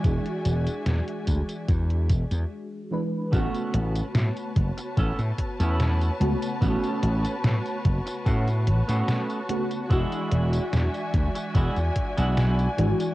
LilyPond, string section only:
\new Staff \with { instrumentName = "String section" } { \time 4/4 \key a \major \tempo 4 = 73 << { <d'' e'' gis''>2. r4 | <b' cis'' a''>1~ | <b' cis'' a''>1 | <d'' e'' gis''>1 | } \\ { fis'2. r4 | fis'1~ | fis'1~ | fis'1 | } >> }